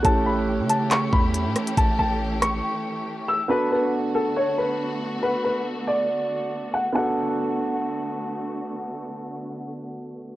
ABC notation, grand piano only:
X:1
M:4/4
L:1/8
Q:1/4=139
K:Bm
V:1 name="Grand piano"
[A,CEGA]8- | [A,CEGA]8 | [B,DFA]8- | [B,DFA]8 |
[B,DFA]8- | [B,DFA]8 |]